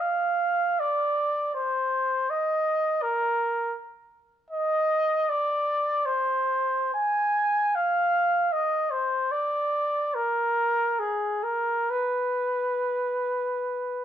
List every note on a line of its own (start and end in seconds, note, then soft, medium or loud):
0.00 0.81 F5 medium
0.80 1.54 D5 medium
1.54 2.31 C5 medium
2.30 3.03 D#5 medium
3.02 3.76 A#4 medium
4.50 5.30 D#5 medium
5.29 6.07 D5 medium
6.06 6.93 C5 medium
6.94 7.76 G#5 medium
7.75 8.54 F5 medium
8.52 8.92 D#5 medium
8.91 9.33 C5 medium
9.31 10.16 D5 medium
10.15 11.01 A#4 medium
10.99 11.44 G#4 soft
11.43 11.91 A#4 soft
11.90 14.05 B4 soft